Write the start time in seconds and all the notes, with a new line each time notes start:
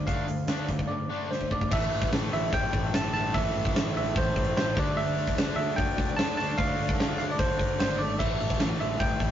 0.07 D2 D3 A3 D4 F5, kick, closed hi-hat
0.28 D2 D3 A3, closed hi-hat
0.48 D2 D3 A3 D4, snare, closed hi-hat
0.68 D3 A3, kick, closed hi-hat
0.79 kick
0.88 D3 A3 D5
1.11 D3 A3 D4
1.31 D3 A3 C5, snare
1.41 kick
1.51 D3 A3 D5, kick
1.61 kick
1.70 A1 A2 E3 A3 E4 A4 E5, kick, crash
1.92 A1, open hi-hat
2.02 kick, snare
2.12 A1, snare, open hi-hat
2.32 A1 E5, snare, open hi-hat
2.53 A1 G5, kick, open hi-hat
2.73 A1, kick, open hi-hat
2.93 A1 A5, snare, open hi-hat
3.13 A2 E3 A3 A5, open hi-hat
3.33 A1 A2 E3 A3 E5, kick, open hi-hat
3.54 A1, open hi-hat
3.65 kick
3.75 A1, snare, open hi-hat
3.95 A1 E5, open hi-hat
4.16 A1 C5, kick, open hi-hat
4.36 A1, kick, open hi-hat
4.57 A1 C5, snare, open hi-hat
4.75 D2 D3 A3 D4 A4 D5, kick, open hi-hat
4.79 D4 D5
4.97 D2 E5, open hi-hat
5.17 D2, open hi-hat
5.27 kick, snare
5.37 D2, snare, open hi-hat
5.56 D2 E5, open hi-hat
5.76 D2 G5, kick, open hi-hat
5.98 D2, kick, open hi-hat
6.17 D2 D3 A3 A5, snare, open hi-hat
6.21 D4
6.37 D3 A3 D4 A5, open hi-hat
6.58 D2 F5, kick, open hi-hat
6.79 D2, open hi-hat
6.89 kick, snare
7.00 D2, snare, open hi-hat
7.18 D2 F5, snare, open hi-hat
7.31 D5
7.38 D2 C5, kick, open hi-hat
7.59 D2, kick, open hi-hat
7.79 G#1 D3 A3 D4 C5, snare, open hi-hat
7.98 D5, open hi-hat
8.18 A1 A2 E3 A3 E4 E5, kick, crash
8.23 A3
8.40 A1, open hi-hat
8.50 kick, snare
8.59 A1, snare, open hi-hat
8.80 A1 E5, open hi-hat
9.00 A1 G5, kick, open hi-hat
9.20 A1, kick, open hi-hat